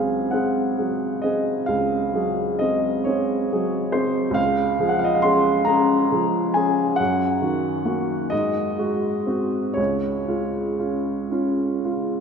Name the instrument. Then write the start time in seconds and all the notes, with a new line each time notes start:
grand piano
Already playing: C#2 F#3 C4 G#4 F5 G#5
0.31 C4 G#4 F#5
0.78 F#3 G#4
1.22 C4 G#4 D#5
1.66 C#2 F5
2.13 F#3 G#4
2.59 C4 G#4 D#5
3.04 C4 G#4 C#5
3.52 F#3 G#4
3.92 C4 G#4 C5
4.31 C#2 F5
4.79 F3 G#4
4.89 F#5
4.99 F5
5.04 D#5
5.15 F5
5.22 C#4 G#4 C6
5.65 C#4 G#4 A#5
6.11 F3 G#4
6.54 C#4 G#4 G#5
6.96 F#2 F#5
7.41 D#3 F#4
7.85 A#3 F#4
8.30 G#2 D#5
8.78 G#3 F#4
9.27 C4 F#4
9.74 C#2 C#5
10.28 G#3 F4
10.79 C#4 F4
11.31 C#4 F4
11.85 G#3 F4